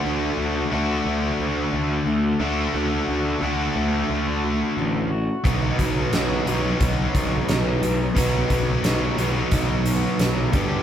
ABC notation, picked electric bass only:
X:1
M:4/4
L:1/8
Q:1/4=89
K:Bdor
V:1 name="Picked electric bass" clef=bass
D,, D,, D,, D,, D,, D,, D,, D,, | D,, D,, D,, D,, D,,2 A,,,2 | B,,, B,,, B,,, B,,, B,,, B,,, B,,, B,,, | B,,, B,,, B,,, B,,, B,,,2 B,,, =G,,, |]